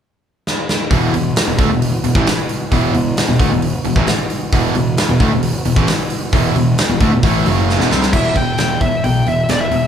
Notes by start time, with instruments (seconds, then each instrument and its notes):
0.47 snare
0.69 snare
0.90 picked electric bass E1, overdriven electric guitar E2 B2 E3, tonewheel organ E3 B3 F#4, kick, open hi-hat
1.13 picked electric bass E1, overdriven electric guitar E2 B2, open hi-hat
1.36 snare, open hi-hat
1.47 picked electric bass E1, overdriven electric guitar E2 B2
1.58 picked electric bass D2, overdriven electric guitar D3 A3, kick, open hi-hat
1.69 picked electric bass E1, overdriven electric guitar E2 B2
1.82 open hi-hat
2.04 picked electric bass E1, overdriven electric guitar E2 B2, open hi-hat
2.15 picked electric bass A1, overdriven electric guitar A2 E3, kick
2.26 snare, open hi-hat
2.49 open hi-hat
2.72 picked electric bass E1, overdriven electric guitar E2 B2 E3, kick, open hi-hat
2.94 picked electric bass E1, overdriven electric guitar E2 B2, open hi-hat
3.17 snare, open hi-hat
3.29 picked electric bass E1, overdriven electric guitar E2 B2
3.40 picked electric bass D2, overdriven electric guitar D3 A3, kick, open hi-hat
3.51 picked electric bass E1, overdriven electric guitar E2 B2
3.62 open hi-hat
3.85 picked electric bass E1, overdriven electric guitar E2 B2, open hi-hat
3.96 picked electric bass A1, overdriven electric guitar A2 E3, kick
4.07 snare, open hi-hat
4.30 open hi-hat
4.53 picked electric bass E1, overdriven electric guitar E2 B2 E3, kick, open hi-hat
4.75 picked electric bass E1, overdriven electric guitar E2 B2, open hi-hat
4.97 snare, open hi-hat
5.09 picked electric bass E1, overdriven electric guitar E2 B2
5.19 picked electric bass D2, overdriven electric guitar D3 A3, kick, open hi-hat
5.31 picked electric bass E1, overdriven electric guitar E2 B2
5.43 open hi-hat
5.65 picked electric bass E1, overdriven electric guitar E2 B2, open hi-hat
5.76 picked electric bass A1, overdriven electric guitar A2 E3, kick
5.87 snare, open hi-hat
6.10 open hi-hat
6.33 picked electric bass E1, overdriven electric guitar E2 B2 E3, kick, open hi-hat
6.56 picked electric bass E1, overdriven electric guitar E2 B2, open hi-hat
6.78 snare, open hi-hat
6.89 picked electric bass E1, overdriven electric guitar E2 B2
7.00 picked electric bass D2, overdriven electric guitar D3 A3, kick, open hi-hat
7.12 picked electric bass E1, overdriven electric guitar E2 B2
7.23 picked electric bass A1, overdriven electric guitar A2 E3 A3, kick, open hi-hat
7.45 picked electric bass F#1, overdriven electric guitar F#2 C#3 F#3, open hi-hat
7.70 snare
7.80 picked electric bass E1, overdriven electric guitar E2 B2, snare
7.91 picked electric bass C2, overdriven electric guitar C3 G3 C4, snare
8.02 snare
8.13 picked electric bass E1, overdriven electric guitar E2 B2 E3, lead electric guitar E5, kick, crash
8.36 picked electric bass E1, overdriven electric guitar E2 B2, lead electric guitar G5, kick, open hi-hat
8.58 picked electric bass E1, overdriven electric guitar E2 B2, lead electric guitar G5, snare, open hi-hat
8.81 overdriven electric guitar E2 B2, lead electric guitar E5, kick, open hi-hat
9.04 picked electric bass B1, overdriven electric guitar E2 B2, lead electric guitar G5, open hi-hat
9.26 picked electric bass E1, overdriven electric guitar E2 B2, lead electric guitar E5, open hi-hat
9.49 picked electric bass E1, overdriven electric guitar E2 B2, lead electric guitar D5, snare, open hi-hat
9.61 lead electric guitar E5
9.71 picked electric bass E1, overdriven electric guitar E2 B2, open hi-hat